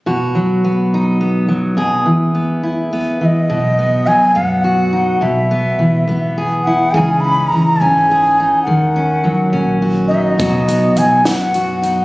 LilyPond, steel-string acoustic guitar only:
\new Staff \with { instrumentName = "Steel-string acoustic guitar" } { \time 6/8 \key b \major \tempo 4. = 70 << { fis'4 b8 dis'8 b4 | gis'4 b8 e'8 b4 | r8 b4 b8 fis'8 dis'8 | r8 b4 b8 gis'8 e'8 |
<e cis' dis' gis'>8 cis'4 cis'8 gis'8 dis'8 | r8 cis'4 cis'8 fis'8 dis'8 | <fis b dis' fis'>8 b4 b8 fis'8 dis'8 | } \\ { b,8 fis2 fis8 | b,8 e2 e8 | b,4 fis2 | b,4 e2 |
cis4 e2 | dis4 fis2 | b,4 fis2 | } >> }